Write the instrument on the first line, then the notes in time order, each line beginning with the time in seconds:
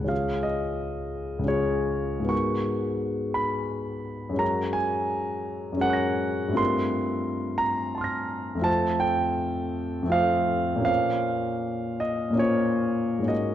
grand piano
Already playing: F#5
0.00 C#2 G#3
0.04 C#4 F4
0.08 G#4 F5
0.43 D#5
1.39 C#2 G#3
1.44 C#4 F4 C#5
1.48 G#4
2.20 G#2 G#3
2.25 B3 F#4
2.29 A#4 C#6
3.34 B5
4.29 F#2 G#3
4.34 C#4 F#4
4.38 A#4 A#5
4.73 G#5
5.72 F#2 G#3
5.77 C#4 F#4
5.81 A#4 F#5 G#5
5.87 C#6 F#6
5.93 A#6
6.48 G2 A3
6.52 C4 F4
6.57 A#4 C6
7.58 A#5
7.95 A5 C6
8.01 F6 A#6
8.55 F2 A3
8.59 C4 F4
8.64 C5 A5
9.00 G5
10.03 F2 A3
10.07 C4 F4
10.12 C5 F5
10.76 A#2 A#3
10.81 C#4 F4
10.85 C5 F5
12.00 D#5
12.30 A#2 A#3
12.35 C#4 F4
12.39 C5 C#5
13.19 G#2 A#3
13.23 C#4 F#4
13.28 A#4 D#5